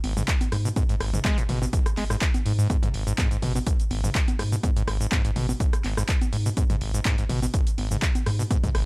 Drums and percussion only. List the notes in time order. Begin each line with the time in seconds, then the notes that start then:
0.04 open hi-hat, high conga
0.17 mid tom, shaker
0.28 kick, clap, closed hi-hat, shaker
0.41 closed hi-hat, high conga, shaker
0.52 cross-stick, open hi-hat
0.66 shaker
0.76 kick, closed hi-hat, high conga, shaker
0.89 closed hi-hat, shaker
1.01 cross-stick, open hi-hat
1.14 closed hi-hat, mid tom, shaker
1.25 kick, clap, closed hi-hat, high conga, shaker
1.38 closed hi-hat, shaker
1.49 open hi-hat, mid tom
1.62 high conga, shaker
1.73 kick, closed hi-hat, shaker
1.86 cross-stick, closed hi-hat, shaker
1.97 clap, open hi-hat, high conga
2.10 cross-stick, shaker
2.21 kick, clap, closed hi-hat, shaker
2.34 closed hi-hat, high conga, shaker
2.46 open hi-hat
2.59 shaker
2.70 kick, closed hi-hat, high conga, shaker
2.83 closed hi-hat, mid tom, shaker
2.94 open hi-hat
3.07 closed hi-hat, shaker
3.18 kick, clap, closed hi-hat, high conga, shaker
3.31 closed hi-hat, shaker
3.42 open hi-hat, mid tom
3.55 high conga, shaker
3.67 kick, closed hi-hat, shaker
3.80 closed hi-hat, shaker
3.91 open hi-hat, high conga
4.04 mid tom, shaker
4.15 kick, clap, closed hi-hat, shaker
4.28 closed hi-hat, high conga, shaker
4.39 cross-stick, open hi-hat
4.53 shaker
4.63 kick, closed hi-hat, high conga, shaker
4.76 closed hi-hat, shaker
4.88 cross-stick, open hi-hat
5.01 closed hi-hat, shaker
5.12 kick, clap, closed hi-hat, high conga, shaker
5.25 closed hi-hat, shaker
5.36 open hi-hat, mid tom
5.49 high conga, shaker
5.60 kick, closed hi-hat, shaker
5.73 cross-stick, closed hi-hat, shaker
5.84 clap, open hi-hat, high conga
5.97 cross-stick, shaker
6.09 kick, clap, closed hi-hat, shaker
6.21 closed hi-hat, high conga, shaker
6.33 open hi-hat
6.46 shaker
6.57 kick, closed hi-hat, high conga, shaker
6.70 closed hi-hat, mid tom, shaker
6.81 open hi-hat
6.94 closed hi-hat, shaker
7.05 kick, clap, closed hi-hat, high conga, shaker
7.18 closed hi-hat, shaker
7.29 open hi-hat, mid tom
7.42 high conga, shaker
7.54 kick, closed hi-hat, shaker
7.67 closed hi-hat, shaker
7.78 open hi-hat, high conga
7.91 mid tom, shaker
8.02 kick, clap, closed hi-hat, shaker
8.15 closed hi-hat, high conga, shaker
8.26 cross-stick, open hi-hat
8.40 shaker
8.51 kick, closed hi-hat, high conga, shaker
8.64 kick, closed hi-hat, mid tom, shaker
8.75 cross-stick, open hi-hat